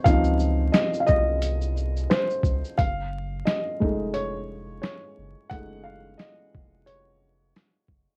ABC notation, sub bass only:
X:1
M:4/4
L:1/16
Q:"Swing 16ths" 1/4=88
K:Gblyd
V:1 name="Sub bass" clef=bass
D,,4 z2 C,,6 z2 D,, z | G,,,4 z2 F,,,6 z2 G,,, z | G,,,4 z2 F,,,6 z2 G,,, z |]